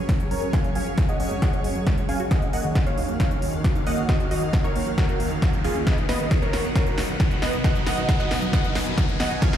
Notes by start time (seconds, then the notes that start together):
Already playing: F#2 F#3 C#4 G#4 C#5, riser
0.09 C#5, kick, snare, closed hi-hat
0.20 G#4, closed hi-hat
0.31 C#4 A#4 C#5, open hi-hat
0.42 C#4, closed hi-hat
0.53 F5 G#5, kick, snare, closed hi-hat
0.64 C#5, closed hi-hat
0.75 F#3 F5 G#5, open hi-hat
0.87 F#3, closed hi-hat
0.98 C#5, kick, snare, closed hi-hat
1.09 G#4 D#5 F#5, closed hi-hat
1.20 C#4, open hi-hat
1.31 G#3, closed hi-hat
1.42 F#4 D#5 F#5, kick, snare, closed hi-hat
1.53 C#5, closed hi-hat
1.64 C#4, open hi-hat
1.75 F#3, closed hi-hat
1.87 G#3, kick, snare, closed hi-hat
1.98 F#3, closed hi-hat
2.09 C#4 F5 G#5, open hi-hat
2.20 F#4, closed hi-hat
2.31 D#2 D#3 C#4 F#4 D#5 F5 F#5, kick, snare, closed hi-hat
2.42 C#4, closed hi-hat
2.53 A#3 D#5 F#5, open hi-hat
2.64 D#3, closed hi-hat
2.75 C#4, kick, snare, closed hi-hat
2.87 A#3 C#5 F5, closed hi-hat
2.98 D#4, open hi-hat
3.09 A#3, closed hi-hat
3.20 C#4 C#5 F5, kick, snare, closed hi-hat
3.31 D#4, closed hi-hat
3.42 D#3, open hi-hat
3.53 D#3, closed hi-hat
3.64 F#4, kick, snare, closed hi-hat
3.75 D#4, closed hi-hat
3.87 A#3 D#5 F#5, open hi-hat
3.98 A#3, closed hi-hat
4.09 C#4 F#4 D#5, kick, snare, closed hi-hat
4.20 F#4, closed hi-hat
4.31 D#3 F#4 D#5, open hi-hat
4.42 D#3, closed hi-hat
4.53 F#4, kick, snare, closed hi-hat
4.64 D#4 A#4 C#5, closed hi-hat
4.76 A#3, open hi-hat
4.87 F#3, closed hi-hat
4.98 C#4 F#4 A#4, kick, snare, closed hi-hat
5.09 F#4, closed hi-hat
5.20 A#3, open hi-hat
5.31 D#3, closed hi-hat
5.42 F#3, kick, snare, closed hi-hat
5.53 D#3, closed hi-hat
5.64 A#3 F4 G#4, open hi-hat
5.76 C#4, closed hi-hat
5.87 B2 D#3 F#3 D#4 B4 D#5 F#5, kick, snare, closed hi-hat
5.98 D#4, closed hi-hat
6.09 B3 B4 D#5, snare, open hi-hat
6.20 D#3, closed hi-hat
6.31 D#4, kick, snare, closed hi-hat
6.42 B3 A#4 C#5, closed hi-hat
6.53 F#4, snare, open hi-hat
6.64 B3, closed hi-hat
6.76 D#4 A#4 C#5, kick, snare, closed hi-hat
6.87 F#4, closed hi-hat
6.98 D#3, snare, open hi-hat
7.09 D#3, closed hi-hat
7.20 B4, kick, snare, closed hi-hat
7.31 F#4, closed hi-hat
7.42 B3 B4 D#5, snare, open hi-hat
7.53 B3, closed hi-hat
7.64 D#4 D#5 F#5 G#5, kick, snare, closed hi-hat
7.75 B4, closed hi-hat
7.87 D#3 D#5 F#5, snare, open hi-hat
7.98 D#3, closed hi-hat
8.09 B4, kick, snare, closed hi-hat
8.20 F#4 D#5 F#5, closed hi-hat
8.31 B3, snare, open hi-hat
8.42 F#3, closed hi-hat
8.53 D#4 D#5 F#5, kick, snare, closed hi-hat
8.64 B4, closed hi-hat
8.75 B3, snare, open hi-hat
8.87 D#3
8.98 F#3, kick, snare, closed hi-hat
9.09 D#3, closed hi-hat
9.20 B3 D#5 F#5, snare, open hi-hat
9.31 D#4, closed hi-hat
9.42 C#2 C#3 F3 G#3 F4 G#4 F5 G#5, kick, snare, closed hi-hat
9.53 F4, snare, closed hi-hat